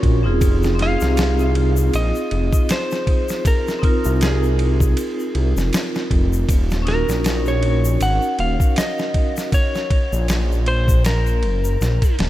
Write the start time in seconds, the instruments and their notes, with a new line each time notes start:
Already playing: vibraphone C#4 F4 F#4 A#4
0.03 detuned saw bass A#1, kick, ride
0.23 detuned saw bass D#1, vibraphone C4 D#4 F4 G#4
0.41 detuned saw bass F1, kick, ride, shaker
0.63 snare, shaker
0.75 vibraphone C4 D#4
0.79 vibraphone F4, electric slide guitar F5, snare, ride
0.83 vibraphone G#4
1.00 detuned saw bass C2, snare, shaker
1.17 snare, ride, shaker
1.39 shaker
1.55 ride
1.77 shaker
1.94 detuned saw bass A#1, electric slide guitar D#5, ride, shaker
2.15 shaker
2.31 detuned saw bass F1, ride
2.53 kick, shaker
2.69 electric slide guitar C5, snare, ride, shaker
2.91 snare, shaker
3.07 kick, ride
3.29 snare, shaker
3.45 electric slide guitar A#4, kick, ride, shaker
3.67 snare, shaker
3.79 vibraphone C4 D#4, kick
3.83 vibraphone F4 A#4, ride
4.05 detuned saw bass C2, shaker
4.21 electric slide guitar G#4, snare, ride, shaker
4.44 shaker
4.59 ride
4.80 kick, shaker
4.97 ride, shaker
5.19 shaker
5.35 detuned saw bass C2, ride
5.56 detuned saw bass F1, snare, shaker
5.73 snare, ride, shaker
5.95 snare, shaker
6.11 detuned saw bass F1, kick, ride
6.33 shaker
6.49 detuned saw bass D#1, kick, ride, shaker
6.70 snare, shaker
6.82 vibraphone C#4 D#4
6.87 vibraphone F#4, electric slide guitar A#4, snare, ride
6.91 vibraphone A#4
7.08 detuned saw bass A#1, snare, shaker
7.24 snare, ride, shaker
7.46 electric slide guitar C#5, shaker
7.63 ride
7.85 shaker
8.01 detuned saw bass G#1, electric slide guitar F#5, ride, shaker
8.22 shaker
8.39 detuned saw bass D#1, electric slide guitar F5, ride
8.60 kick, shaker
8.76 electric slide guitar D#5, snare, ride, shaker
8.98 snare, shaker
9.14 kick, ride
9.37 snare, shaker
9.52 electric slide guitar C#5, kick, ride, shaker
9.75 snare, shaker
9.90 kick, ride
10.12 detuned saw bass A#1, shaker
10.28 snare, ride, shaker
10.52 shaker
10.66 electric slide guitar C5, ride
10.88 kick, shaker
11.05 electric slide guitar A#4, snare, ride, shaker
11.26 shaker
11.43 detuned saw bass F#1, ride
11.64 shaker
11.81 detuned saw bass A#1, snare, shaker
12.02 kick, ride, shaker
12.19 detuned saw bass D#1, snare, ride